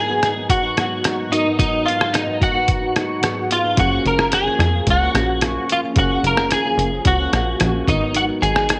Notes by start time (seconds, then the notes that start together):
Already playing: G#2 B3 D#4 F#4 G#4 A#4
0.08 G#2 F#3 B3 D#4
0.22 G#2 F#3 B3 D#4, cross-stick, closed hi-hat
0.36 F#3 B3 D#4
0.50 F#4, kick, closed hi-hat
0.62 F#3 B3 D#4
0.76 G#2 F#3 B3 D#4, cross-stick, closed hi-hat
1.04 G#2 F#3 B3 D#4, cross-stick, closed hi-hat
1.29 G#2 F#3 B3 D#4 F#4, closed hi-hat
1.34 A#4
1.45 F#3 B3 D#4
1.59 G#2 F#3 B3 D#4, kick, closed hi-hat
1.86 G#2 F#3 B3 D#4 F4, closed hi-hat
2.01 cross-stick
2.14 D#4, cross-stick, closed hi-hat
2.27 G#2 F#3 B3 D#4
2.40 G#2 F#3 B3 D#4 F#4, kick, closed hi-hat
2.54 F#3 B3 D#4
2.68 kick, closed hi-hat
2.81 F#3 B3 D#4
2.96 G#2 F#3 B3 D#4, cross-stick, closed hi-hat
3.22 G#2 F#3 B3 D#4 F#4 G#4, cross-stick, closed hi-hat
3.51 G#2 F#3 B3 D#4 F4, closed hi-hat
3.64 F#3 B3 D#4
3.75 F#1 F#2 F3 A#3 C#4 G#4 F5, kick, closed hi-hat
3.79 F#4 A#4
4.04 F#1 F#2 F3 A#3 C#4 A#4, closed hi-hat
4.19 cross-stick
4.32 G#4, cross-stick, closed hi-hat
4.46 F#2 F3 A#3 C#4
4.59 F2 F#2 F3 A#3 C#4, cross-stick, closed hi-hat
4.73 F3 A#3 C#4
4.87 C#2 F#4, kick, closed hi-hat
5.00 F3 A#3 C#4
5.14 A#1 F#2 F3 A#3 C#4, cross-stick, closed hi-hat
5.41 F#2 F3 A#3 C#4, cross-stick, closed hi-hat
5.69 F#2 F3 A#3 C#4 F4, closed hi-hat
5.83 F3 A#3 C#4
5.94 F#1 F#2 C#4 G#4 F5, kick, closed hi-hat
5.98 F3 A#3 C#4 F#4 A#4
6.23 F#1 F#2 F3 A#3 C#4 A#4, closed hi-hat
6.37 cross-stick
6.51 G#4, cross-stick, closed hi-hat
6.65 F#2 F3 A#3 C#4
6.78 F#1 F#2 F3 A#3 C#4, closed hi-hat
6.91 F3 A#3 C#4
7.05 C#2 F#4, kick, closed hi-hat
7.20 F3 A#3 C#4
7.33 A#1 F#2 F3 A#3 C#4, cross-stick, closed hi-hat
7.60 A#1 F#2 F3 A#3 C#4, cross-stick, closed hi-hat
7.85 G#1 G#2 F#3 B3 D#4 F#4, kick, closed hi-hat
7.89 B3 D#4 A#4
8.01 F#3 B3 D#4
8.14 G#2 F#3 B3 D#4 F#4, closed hi-hat
8.42 G#1 G#2 F#3 B3 D#4 G#4, closed hi-hat
8.56 cross-stick
8.69 cross-stick, closed hi-hat